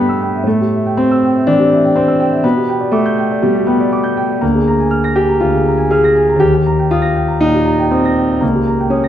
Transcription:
Already playing: G2 G3 A3 B3 G4 E5 G5 B5 E6
0.09 E6
0.22 G5
0.36 E5
0.44 A2 A3
0.61 G4
0.73 E5
0.86 G5
0.97 C4 C6
1.11 E6
1.24 G5
1.36 E5
1.47 E3 D4
1.60 G4
1.72 E5
1.84 G5
1.96 C4 C6
2.08 E6
2.20 G5
2.32 E5
2.44 B2 B3
2.57 G4
2.69 G5
2.80 D5
2.92 A3 D6
3.06 G6
3.18 G5
3.32 D5
3.42 B2 G3
3.55 G4
3.67 B3 G5
3.80 D5
3.93 D6
4.04 G6
4.17 G5
4.30 D5
4.41 D2 A#3
4.55 G#4
4.68 A#5
4.80 G#5
4.91 F6
5.04 A#6
5.16 G4 G#5
5.29 A#5
5.40 D2 F4
5.54 G#4
5.66 A#5
5.78 G#5
5.91 G#4 F6
6.04 A#6
6.16 G#5
6.29 A#5
6.36 D#2 G4
6.54 G4
6.67 A#5
6.79 G5
6.91 F4 D#6
7.02 A#6
7.15 G5
7.28 A#5
7.41 A#2 D#4
7.54 G4
7.66 A#5
7.79 G5
7.91 C4 D#6
8.05 A#6
8.17 G5
8.30 A#5
8.41 C#2 A#3
8.55 G4
8.67 A#5
8.80 G5
8.90 C#4 D#6
9.04 A#6

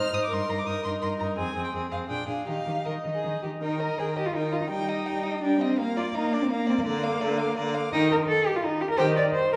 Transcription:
Already playing: D#4 C5 F6
0.12 G#2 D#4 C5 D#6
0.24 D6
0.29 G2 D#4 A#4 C6
0.47 G2 D#4 A#4 A#5
0.58 D6
0.66 G2 D#4 A#4 D#6
0.84 G2 D#4 A#4 C6
1.02 G2 D#4 A#4 C6
1.20 G2 D#4 A#4 A#5
1.37 F2 C4 G#4 G#5
1.55 F2 C4 G#4
1.64 G5
1.74 F2 C4 G#4
1.91 F2 C4 G#4 F5
2.09 A#2 D4 G#4 G5
2.27 A#2 D4 G#4 F5
2.47 D#3 D#4 G4 F5
2.67 D#3 D#4 G4
2.85 D#3 D#4 A#4 D#5
3.05 D#3 D#4
3.15 G#4
3.24 D#3 D#4
3.43 D#3 D#4 G4
3.62 D#3 D#4 A#4 G5
3.80 A#4 D#5 A#5
3.98 D#3 G#4 A#4 G5
4.16 G4 D#5 A#5
4.26 F4
4.34 D#3 D#4 A#4 G5
4.52 F4 D#5 A#5
4.62 D#4
4.70 G3 D#4 G5 A#5
4.89 D#5 G5
5.06 G3 G5 A#5
5.24 D#5 G5
5.43 G3 D4 G5 A#5
5.61 C4 D#5 G5
5.78 A#3 F5 A#5
5.97 F4 D5 D6
6.15 A#3 D#4 F5 A#5
6.33 D4 D5 D6
6.42 C4
6.49 A#3 F5 A#5
6.67 C4 D5 D6
6.79 A#3
6.85 D3 A#3 D5 A#5
7.04 F5 D6
7.21 D3 D5 A#5
7.38 F5 D6
7.57 D3 D5 A#5
7.75 F5 D6
7.92 D#3 D#4 D#5 G5
8.11 A#4
8.28 A4
8.47 G4
8.56 F4
8.64 D#4
8.81 G4
8.90 A#4
8.98 D#3 G4 C5 G5
9.16 D5
9.34 C5
9.53 A#4

